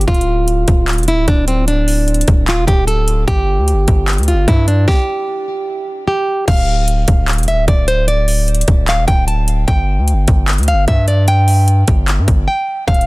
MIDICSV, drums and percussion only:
0, 0, Header, 1, 2, 480
1, 0, Start_track
1, 0, Key_signature, -1, "minor"
1, 0, Tempo, 400000
1, 94, Time_signature, 4, 2, 24, 8
1, 15678, End_track
2, 0, Start_track
2, 0, Title_t, "Drums"
2, 13, Note_on_c, 9, 42, 55
2, 93, Note_off_c, 9, 42, 0
2, 93, Note_on_c, 9, 36, 112
2, 93, Note_on_c, 9, 42, 58
2, 173, Note_off_c, 9, 42, 0
2, 173, Note_on_c, 9, 42, 57
2, 213, Note_off_c, 9, 36, 0
2, 253, Note_off_c, 9, 42, 0
2, 253, Note_on_c, 9, 42, 59
2, 373, Note_off_c, 9, 42, 0
2, 571, Note_on_c, 9, 42, 78
2, 691, Note_off_c, 9, 42, 0
2, 812, Note_on_c, 9, 42, 89
2, 814, Note_on_c, 9, 36, 99
2, 932, Note_off_c, 9, 42, 0
2, 934, Note_off_c, 9, 36, 0
2, 1053, Note_on_c, 9, 39, 114
2, 1053, Note_on_c, 9, 42, 49
2, 1116, Note_off_c, 9, 42, 0
2, 1116, Note_on_c, 9, 42, 47
2, 1173, Note_off_c, 9, 39, 0
2, 1180, Note_off_c, 9, 42, 0
2, 1180, Note_on_c, 9, 42, 49
2, 1237, Note_off_c, 9, 42, 0
2, 1237, Note_on_c, 9, 42, 51
2, 1294, Note_off_c, 9, 42, 0
2, 1294, Note_on_c, 9, 42, 80
2, 1414, Note_off_c, 9, 42, 0
2, 1532, Note_on_c, 9, 42, 78
2, 1533, Note_on_c, 9, 36, 102
2, 1652, Note_off_c, 9, 42, 0
2, 1653, Note_off_c, 9, 36, 0
2, 1772, Note_on_c, 9, 42, 69
2, 1892, Note_off_c, 9, 42, 0
2, 2013, Note_on_c, 9, 42, 84
2, 2133, Note_off_c, 9, 42, 0
2, 2254, Note_on_c, 9, 46, 88
2, 2374, Note_off_c, 9, 46, 0
2, 2493, Note_on_c, 9, 42, 44
2, 2573, Note_off_c, 9, 42, 0
2, 2573, Note_on_c, 9, 42, 58
2, 2653, Note_off_c, 9, 42, 0
2, 2653, Note_on_c, 9, 42, 78
2, 2731, Note_off_c, 9, 42, 0
2, 2731, Note_on_c, 9, 42, 86
2, 2734, Note_on_c, 9, 36, 98
2, 2851, Note_off_c, 9, 42, 0
2, 2854, Note_off_c, 9, 36, 0
2, 2973, Note_on_c, 9, 42, 56
2, 2974, Note_on_c, 9, 39, 115
2, 3093, Note_off_c, 9, 42, 0
2, 3094, Note_off_c, 9, 39, 0
2, 3214, Note_on_c, 9, 36, 101
2, 3214, Note_on_c, 9, 42, 86
2, 3334, Note_off_c, 9, 36, 0
2, 3334, Note_off_c, 9, 42, 0
2, 3453, Note_on_c, 9, 42, 77
2, 3573, Note_off_c, 9, 42, 0
2, 3692, Note_on_c, 9, 42, 70
2, 3812, Note_off_c, 9, 42, 0
2, 3933, Note_on_c, 9, 36, 111
2, 3933, Note_on_c, 9, 42, 83
2, 4053, Note_off_c, 9, 36, 0
2, 4053, Note_off_c, 9, 42, 0
2, 4412, Note_on_c, 9, 42, 81
2, 4532, Note_off_c, 9, 42, 0
2, 4652, Note_on_c, 9, 42, 88
2, 4654, Note_on_c, 9, 36, 98
2, 4772, Note_off_c, 9, 42, 0
2, 4774, Note_off_c, 9, 36, 0
2, 4893, Note_on_c, 9, 39, 117
2, 4893, Note_on_c, 9, 42, 49
2, 4956, Note_off_c, 9, 42, 0
2, 4956, Note_on_c, 9, 42, 49
2, 5013, Note_off_c, 9, 39, 0
2, 5020, Note_off_c, 9, 42, 0
2, 5020, Note_on_c, 9, 42, 50
2, 5077, Note_off_c, 9, 42, 0
2, 5077, Note_on_c, 9, 42, 51
2, 5135, Note_off_c, 9, 42, 0
2, 5135, Note_on_c, 9, 42, 84
2, 5255, Note_off_c, 9, 42, 0
2, 5374, Note_on_c, 9, 36, 102
2, 5374, Note_on_c, 9, 42, 77
2, 5494, Note_off_c, 9, 36, 0
2, 5494, Note_off_c, 9, 42, 0
2, 5613, Note_on_c, 9, 42, 70
2, 5733, Note_off_c, 9, 42, 0
2, 5853, Note_on_c, 9, 36, 110
2, 5853, Note_on_c, 9, 38, 90
2, 5973, Note_off_c, 9, 36, 0
2, 5973, Note_off_c, 9, 38, 0
2, 7774, Note_on_c, 9, 36, 111
2, 7774, Note_on_c, 9, 42, 86
2, 7774, Note_on_c, 9, 49, 102
2, 7894, Note_off_c, 9, 36, 0
2, 7894, Note_off_c, 9, 42, 0
2, 7894, Note_off_c, 9, 49, 0
2, 8253, Note_on_c, 9, 42, 81
2, 8373, Note_off_c, 9, 42, 0
2, 8492, Note_on_c, 9, 42, 91
2, 8495, Note_on_c, 9, 36, 100
2, 8612, Note_off_c, 9, 42, 0
2, 8615, Note_off_c, 9, 36, 0
2, 8734, Note_on_c, 9, 42, 51
2, 8735, Note_on_c, 9, 39, 120
2, 8797, Note_off_c, 9, 42, 0
2, 8797, Note_on_c, 9, 42, 49
2, 8855, Note_off_c, 9, 39, 0
2, 8861, Note_off_c, 9, 42, 0
2, 8861, Note_on_c, 9, 42, 52
2, 8917, Note_off_c, 9, 42, 0
2, 8917, Note_on_c, 9, 42, 52
2, 8975, Note_off_c, 9, 42, 0
2, 8975, Note_on_c, 9, 42, 85
2, 9095, Note_off_c, 9, 42, 0
2, 9214, Note_on_c, 9, 36, 110
2, 9215, Note_on_c, 9, 42, 82
2, 9334, Note_off_c, 9, 36, 0
2, 9335, Note_off_c, 9, 42, 0
2, 9454, Note_on_c, 9, 42, 72
2, 9574, Note_off_c, 9, 42, 0
2, 9695, Note_on_c, 9, 42, 85
2, 9815, Note_off_c, 9, 42, 0
2, 9935, Note_on_c, 9, 46, 90
2, 10055, Note_off_c, 9, 46, 0
2, 10175, Note_on_c, 9, 42, 45
2, 10254, Note_off_c, 9, 42, 0
2, 10254, Note_on_c, 9, 42, 62
2, 10335, Note_off_c, 9, 42, 0
2, 10335, Note_on_c, 9, 42, 80
2, 10412, Note_off_c, 9, 42, 0
2, 10412, Note_on_c, 9, 42, 88
2, 10415, Note_on_c, 9, 36, 100
2, 10532, Note_off_c, 9, 42, 0
2, 10535, Note_off_c, 9, 36, 0
2, 10653, Note_on_c, 9, 42, 59
2, 10654, Note_on_c, 9, 39, 115
2, 10773, Note_off_c, 9, 42, 0
2, 10774, Note_off_c, 9, 39, 0
2, 10894, Note_on_c, 9, 36, 106
2, 10894, Note_on_c, 9, 42, 84
2, 11014, Note_off_c, 9, 36, 0
2, 11014, Note_off_c, 9, 42, 0
2, 11133, Note_on_c, 9, 42, 77
2, 11253, Note_off_c, 9, 42, 0
2, 11373, Note_on_c, 9, 42, 69
2, 11493, Note_off_c, 9, 42, 0
2, 11613, Note_on_c, 9, 36, 112
2, 11613, Note_on_c, 9, 42, 83
2, 11733, Note_off_c, 9, 36, 0
2, 11733, Note_off_c, 9, 42, 0
2, 12092, Note_on_c, 9, 42, 81
2, 12212, Note_off_c, 9, 42, 0
2, 12332, Note_on_c, 9, 42, 87
2, 12334, Note_on_c, 9, 36, 100
2, 12452, Note_off_c, 9, 42, 0
2, 12454, Note_off_c, 9, 36, 0
2, 12573, Note_on_c, 9, 39, 122
2, 12573, Note_on_c, 9, 42, 49
2, 12636, Note_off_c, 9, 42, 0
2, 12636, Note_on_c, 9, 42, 51
2, 12693, Note_off_c, 9, 39, 0
2, 12700, Note_off_c, 9, 42, 0
2, 12700, Note_on_c, 9, 42, 52
2, 12756, Note_off_c, 9, 42, 0
2, 12756, Note_on_c, 9, 42, 52
2, 12814, Note_off_c, 9, 42, 0
2, 12814, Note_on_c, 9, 42, 84
2, 12934, Note_off_c, 9, 42, 0
2, 13053, Note_on_c, 9, 36, 106
2, 13053, Note_on_c, 9, 42, 79
2, 13173, Note_off_c, 9, 36, 0
2, 13173, Note_off_c, 9, 42, 0
2, 13292, Note_on_c, 9, 42, 71
2, 13412, Note_off_c, 9, 42, 0
2, 13533, Note_on_c, 9, 42, 86
2, 13653, Note_off_c, 9, 42, 0
2, 13773, Note_on_c, 9, 46, 88
2, 13893, Note_off_c, 9, 46, 0
2, 14012, Note_on_c, 9, 42, 76
2, 14132, Note_off_c, 9, 42, 0
2, 14251, Note_on_c, 9, 42, 88
2, 14254, Note_on_c, 9, 36, 104
2, 14371, Note_off_c, 9, 42, 0
2, 14374, Note_off_c, 9, 36, 0
2, 14493, Note_on_c, 9, 42, 58
2, 14494, Note_on_c, 9, 39, 122
2, 14613, Note_off_c, 9, 42, 0
2, 14614, Note_off_c, 9, 39, 0
2, 14734, Note_on_c, 9, 36, 104
2, 14734, Note_on_c, 9, 42, 83
2, 14854, Note_off_c, 9, 36, 0
2, 14854, Note_off_c, 9, 42, 0
2, 15453, Note_on_c, 9, 36, 113
2, 15453, Note_on_c, 9, 42, 59
2, 15533, Note_off_c, 9, 42, 0
2, 15533, Note_on_c, 9, 42, 60
2, 15573, Note_off_c, 9, 36, 0
2, 15613, Note_off_c, 9, 42, 0
2, 15613, Note_on_c, 9, 42, 58
2, 15678, Note_off_c, 9, 42, 0
2, 15678, End_track
0, 0, End_of_file